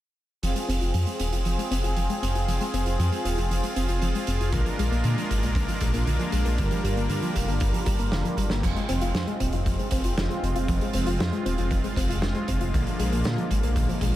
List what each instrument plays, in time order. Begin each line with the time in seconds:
0.42 detuned saw bass F1, synth arpeggio sound F3, supersaw synth C4 F4 G#4, closed hi-hat
0.56 synth arpeggio sound G#3, closed hi-hat
0.68 detuned saw bass F1, synth arpeggio sound C4, closed hi-hat
0.81 detuned saw bass F1, synth arpeggio sound F4, closed hi-hat
0.94 detuned saw bass F2, synth arpeggio sound F3, closed hi-hat
1.07 synth arpeggio sound G#3, closed hi-hat
1.19 detuned saw bass D#1, synth arpeggio sound C4, closed hi-hat
1.32 detuned saw bass F1, synth arpeggio sound F4, closed hi-hat
1.45 detuned saw bass F1, synth arpeggio sound F3, closed hi-hat
1.58 synth arpeggio sound G#3, closed hi-hat
1.71 detuned saw bass F1, synth arpeggio sound C4, closed hi-hat
1.84 detuned saw bass F1, synth arpeggio sound F4, closed hi-hat
1.97 detuned saw bass F1, synth arpeggio sound F3, closed hi-hat
2.10 synth arpeggio sound G#3, closed hi-hat
2.22 detuned saw bass F1, synth arpeggio sound C4, closed hi-hat
2.35 detuned saw bass F1, synth arpeggio sound F4, closed hi-hat
2.48 detuned saw bass F1, synth arpeggio sound F3, closed hi-hat
2.61 synth arpeggio sound G#3, closed hi-hat
2.74 detuned saw bass F1, synth arpeggio sound C4, closed hi-hat
2.86 detuned saw bass F1, synth arpeggio sound F4, closed hi-hat
2.99 detuned saw bass F2, synth arpeggio sound F3, closed hi-hat
3.12 synth arpeggio sound G#3, closed hi-hat
3.25 detuned saw bass D#1, synth arpeggio sound C4, closed hi-hat
3.38 detuned saw bass F1, synth arpeggio sound F4, closed hi-hat
3.50 detuned saw bass F1, synth arpeggio sound F3, closed hi-hat
3.63 synth arpeggio sound G#3, closed hi-hat
3.76 detuned saw bass F1, synth arpeggio sound C4, closed hi-hat
3.89 detuned saw bass F1, synth arpeggio sound F4, closed hi-hat
4.02 detuned saw bass F1, synth arpeggio sound F3, closed hi-hat
4.15 synth arpeggio sound G#3, closed hi-hat
4.27 detuned saw bass F1, synth arpeggio sound C4, closed hi-hat
4.40 detuned saw bass F1, synth arpeggio sound F4, closed hi-hat
4.52 detuned saw bass A#1, synth arpeggio sound D3, supersaw synth G#3 A#3 D4 A#4, kick, closed hi-hat
4.66 synth arpeggio sound F3, closed hi-hat
4.79 detuned saw bass A#1, synth arpeggio sound G#3, closed hi-hat
4.91 detuned saw bass A#1, synth arpeggio sound A#3, closed hi-hat
5.04 detuned saw bass A#2, synth arpeggio sound D3, closed hi-hat
5.17 synth arpeggio sound F3, closed hi-hat
5.30 detuned saw bass G#1, synth arpeggio sound G#3, kick, closed hi-hat
5.43 detuned saw bass A#1, synth arpeggio sound A#3, closed hi-hat
5.55 detuned saw bass A#1, synth arpeggio sound D3, kick, closed hi-hat
5.68 synth arpeggio sound F3, closed hi-hat
5.80 detuned saw bass A#1, synth arpeggio sound G#3, kick, closed hi-hat
5.94 detuned saw bass A#1, synth arpeggio sound A#3, closed hi-hat
6.06 detuned saw bass A#1, synth arpeggio sound D3, closed hi-hat
6.19 synth arpeggio sound F3, closed hi-hat
6.32 detuned saw bass A#1, synth arpeggio sound G#3, closed hi-hat
6.45 detuned saw bass A#1, synth arpeggio sound A#3, closed hi-hat
6.58 detuned saw bass G1, synth arpeggio sound D3, supersaw synth G3 A#4, kick, closed hi-hat
6.71 synth arpeggio sound F3, closed hi-hat
6.84 detuned saw bass G1, synth arpeggio sound G3, closed hi-hat
6.96 detuned saw bass G1, synth arpeggio sound A#3, closed hi-hat
7.09 detuned saw bass G2, synth arpeggio sound D3, closed hi-hat
7.22 synth arpeggio sound F3, closed hi-hat
7.35 detuned saw bass F1, synth arpeggio sound G3, kick, closed hi-hat
7.48 detuned saw bass G1, synth arpeggio sound A#3, closed hi-hat
7.60 detuned saw bass G1, synth arpeggio sound D3, kick, closed hi-hat
7.73 synth arpeggio sound F3, closed hi-hat
7.86 detuned saw bass G1, synth arpeggio sound G3, kick, closed hi-hat
7.99 detuned saw bass G1, synth arpeggio sound A#3, closed hi-hat
8.12 detuned saw bass F1, synth arpeggio sound D3, snare, closed hi-hat
8.25 synth arpeggio sound F3, closed hi-hat
8.37 detuned saw bass G1, synth arpeggio sound G3, kick, closed hi-hat
8.50 detuned saw bass G1, synth arpeggio sound A#3, snare, closed hi-hat
8.63 detuned saw bass F1, synth arpeggio sound F3, supersaw synth G#3 C4 F4, kick, closed hi-hat, crash
8.76 synth arpeggio sound G#3, closed hi-hat
8.89 detuned saw bass F1, synth arpeggio sound C4, closed hi-hat
9.01 detuned saw bass F1, synth arpeggio sound F4, closed hi-hat
9.14 detuned saw bass F2, synth arpeggio sound F3, snare, closed hi-hat
9.27 synth arpeggio sound G#3, closed hi-hat
9.40 detuned saw bass D#1, synth arpeggio sound C4, kick, closed hi-hat
9.53 detuned saw bass F1, synth arpeggio sound F4, closed hi-hat
9.66 detuned saw bass F1, synth arpeggio sound F3, kick, closed hi-hat
9.79 synth arpeggio sound G#3, closed hi-hat
9.91 detuned saw bass F1, synth arpeggio sound C4, kick, closed hi-hat
10.04 detuned saw bass F1, synth arpeggio sound F4, closed hi-hat
10.17 detuned saw bass F1, synth arpeggio sound F3, snare, closed hi-hat
10.30 synth arpeggio sound G#3, closed hi-hat
10.43 detuned saw bass F1, synth arpeggio sound C4, closed hi-hat
10.56 detuned saw bass F1, synth arpeggio sound F4, closed hi-hat
10.68 detuned saw bass F1, synth arpeggio sound F3, kick, closed hi-hat
10.81 synth arpeggio sound G#3, closed hi-hat
10.93 detuned saw bass F1, synth arpeggio sound C4, closed hi-hat
11.06 detuned saw bass F1, synth arpeggio sound F4, closed hi-hat
11.20 detuned saw bass F2, synth arpeggio sound F3, snare, closed hi-hat
11.32 synth arpeggio sound G#3, closed hi-hat
11.45 detuned saw bass D#1, synth arpeggio sound C4, closed hi-hat
11.58 detuned saw bass F1, synth arpeggio sound F4, closed hi-hat
11.71 detuned saw bass F1, synth arpeggio sound F3, kick, closed hi-hat
11.84 synth arpeggio sound G#3, closed hi-hat
11.96 detuned saw bass F1, synth arpeggio sound C4, kick, closed hi-hat
12.09 detuned saw bass F1, synth arpeggio sound F4, closed hi-hat
12.22 detuned saw bass F1, synth arpeggio sound F3, snare, closed hi-hat
12.35 synth arpeggio sound G#3, closed hi-hat
12.48 detuned saw bass F1, synth arpeggio sound C4, kick, closed hi-hat
12.61 detuned saw bass F1, synth arpeggio sound F4, closed hi-hat
12.74 detuned saw bass A#1, synth arpeggio sound D3, supersaw synth D3 F3 A#3, kick, closed hi-hat
12.87 synth arpeggio sound F3, closed hi-hat
12.99 detuned saw bass A#1, synth arpeggio sound G#3, closed hi-hat
13.12 detuned saw bass A#1, synth arpeggio sound A#3, closed hi-hat
13.24 detuned saw bass A#2, synth arpeggio sound D3, snare, closed hi-hat
13.38 synth arpeggio sound F3, closed hi-hat
13.51 detuned saw bass G#1, synth arpeggio sound G#3, kick, closed hi-hat
13.63 detuned saw bass A#1, synth arpeggio sound A#3, closed hi-hat
13.76 detuned saw bass A#1, synth arpeggio sound D3, kick, closed hi-hat
13.89 synth arpeggio sound F3, closed hi-hat
14.01 detuned saw bass A#1, synth arpeggio sound G#3, kick, closed hi-hat